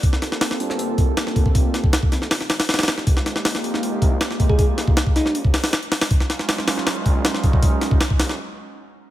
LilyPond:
<<
  \new Staff \with { instrumentName = "FM electric piano" } { \time 4/4 \key f \dorian \tempo 4 = 158 r1 | r1 | r2. r8. aes'16 | aes'16 r4 r16 ees'8 r2 |
r1 | r1 | }
  \new Staff \with { instrumentName = "Ambient pad" } { \time 4/4 \key f \dorian <bes c' f' g' a'>2.~ <bes c' f' g' a'>8 r8 | r1 | <aes bes ees' f' g'>2.~ <aes bes ees' f' g'>8 r8 | r1 |
<ges aes des' ees' f'>2.~ <ges aes des' ees' f'>8 r8 | r1 | }
  \new Staff \with { instrumentName = "Detuned saw bass" } { \clef bass \time 4/4 \key f \dorian r4. g,,4 d,,8 g,,4 | f,,4 r8 f,,4 aes,,16 r16 c,8 ees,,8~ | ees,,4. f,,4 c,8 f,,4~ | f,,4 r8 ees,,4 ees,,16 des,16 r4 |
r4. ees,,4 bes,,8 ees,,4~ | ees,,4 r8 ees,,8 r2 | }
  \new DrumStaff \with { instrumentName = "Drums" } \drummode { \time 4/4 <hho bd>16 sn16 <hho sn>16 sn16 <hho sn>16 sn16 hho16 sn16 hho8 <hho bd>8 <hho sn>16 sn16 <hho bd>16 bd16 | <hho bd>8 <hho sn>16 bd16 <hho sn>16 bd16 <hho sn>16 sn16 <hho sn>16 sn16 <hho sn>16 <hho sn>16 <hho sn>32 <hho sn>32 <hho sn>32 <hho sn>32 <hho sn>16 sn16 | <hho bd>16 sn16 <hho sn>16 sn16 <hho sn>16 sn16 hho16 sn16 hho8 <hho bd>8 <hho sn>16 sn16 <hho bd>16 bd16 | <hho bd>8 <hho sn>16 bd16 <hho sn>16 bd16 <hho sn>16 sn16 hho16 bd16 <hho sn>16 <hho sn>16 <hho sn>16 hh16 <hho sn>16 <hho sn>16 |
<hho bd>16 sn16 <hho sn>16 sn16 <hho sn>16 sn16 <hho sn>16 sn16 <hho sn>8 <hho bd>8 <hho sn>16 sn16 <hho bd>16 bd16 | <hho bd>8 <hho sn>16 bd16 <hho sn>16 bd16 <hho sn>16 sn16 r4 r4 | }
>>